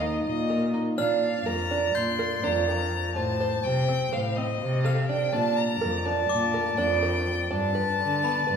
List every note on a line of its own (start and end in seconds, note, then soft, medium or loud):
0.00 0.16 D#2 medium
0.00 0.41 D#4 medium
0.00 0.73 D#5 loud
0.00 0.23 D#5 medium
0.23 0.84 A#2 medium
0.23 0.75 D#5 medium
0.50 0.69 A#4 medium
0.74 0.93 D#4 medium
0.97 1.37 A#2 medium
0.97 1.37 D4 medium
0.97 3.17 D5 loud
0.97 1.47 F5 medium
0.97 1.89 F6 medium
1.46 1.85 F2 medium
1.46 1.66 A#4 medium
1.46 1.96 A#5 loud
1.71 2.10 D4 medium
1.94 2.34 A#2 medium
1.94 2.45 C6 medium
1.94 2.86 G6 medium
2.19 2.39 A#4 medium
2.43 3.02 F2 medium
2.43 2.63 D4 medium
2.43 3.14 A#5 medium
2.68 3.07 A#4 medium
3.15 3.55 A2 medium
3.15 3.35 F4 medium
3.15 5.06 C5 loud
3.15 3.65 A5 loud
3.40 3.79 C5 medium
3.64 4.03 C3 medium
3.64 4.14 G5 loud
3.88 4.08 C4 medium
4.12 4.51 A2 medium
4.12 4.32 C5 medium
4.12 4.37 F5 medium
4.35 4.76 C4 medium
4.35 4.86 D#5 medium
4.61 5.19 C3 medium
4.84 5.04 A4 medium
4.84 5.08 F5 medium
4.84 5.54 F6 soft
5.08 5.29 D4 medium
5.08 5.34 G5 medium
5.32 5.72 A#2 medium
5.32 5.73 D4 medium
5.32 7.46 D5 loud
5.32 5.58 A5 loud
5.57 6.06 A#5 medium
5.81 6.20 F2 medium
5.81 6.01 A#4 medium
6.05 6.45 D4 medium
6.05 6.79 A5 medium
6.29 6.69 A#2 medium
6.29 7.21 D6 medium
6.54 6.74 A#4 medium
6.77 7.37 F2 loud
6.77 6.98 D4 medium
6.77 7.52 G5 medium
7.02 7.42 A#4 medium
7.50 7.90 G2 medium
7.50 7.70 D4 medium
7.50 8.56 D5 loud
7.50 8.56 A5 loud
7.75 8.14 B4 medium
7.99 8.38 D3 medium
8.23 8.43 B3 medium
8.23 8.56 B5 soft
8.47 8.56 G2 medium
8.47 8.56 B4 medium